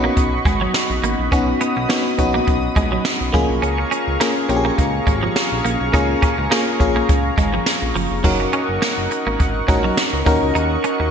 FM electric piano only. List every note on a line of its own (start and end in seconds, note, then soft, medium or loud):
0.00 1.32 B3 medium
0.00 1.32 C#4 medium
0.00 1.32 D#4 medium
0.00 1.33 F#4 medium
1.32 1.72 B3 medium
1.32 1.72 C#4 medium
1.32 1.72 D#4 medium
1.32 1.72 F#4 medium
1.89 2.10 B3 medium
1.89 2.10 C#4 medium
1.89 2.10 D#4 medium
1.89 2.10 F#4 medium
2.18 2.97 B3 medium
2.18 2.97 C#4 medium
2.18 2.97 D#4 medium
2.18 2.97 F#4 medium
3.33 4.04 A#3 medium
3.33 4.04 C#4 medium
3.33 4.04 F4 medium
3.33 4.04 G#4 medium
4.20 4.41 A#3 medium
4.20 4.41 C#4 medium
4.20 4.41 F4 medium
4.20 4.41 G#4 medium
4.49 5.27 A#3 medium
4.49 5.28 C#4 medium
4.49 5.28 F4 medium
4.49 4.57 G4 medium
4.56 5.31 G#4 medium
5.93 6.33 A#3 medium
5.93 6.33 C#4 medium
5.93 6.33 F4 medium
5.93 6.33 G#4 medium
6.50 6.71 A#3 medium
6.50 6.71 C#4 medium
6.50 6.72 F4 medium
6.50 6.72 G#4 medium
6.79 7.58 A#3 medium
6.79 7.58 C#4 medium
6.79 7.58 F4 medium
6.79 7.59 G#4 medium
8.24 9.02 C#4 medium
8.24 9.03 D#4 medium
8.24 9.03 F#4 medium
8.24 9.03 A#4 medium
9.68 10.24 C#4 medium
9.68 10.25 D#4 medium
9.68 10.25 F#4 medium
9.68 10.26 A#4 medium
10.26 11.11 C#4 medium
10.26 11.11 D#4 medium
10.26 11.11 F#4 medium
10.26 11.11 A#4 medium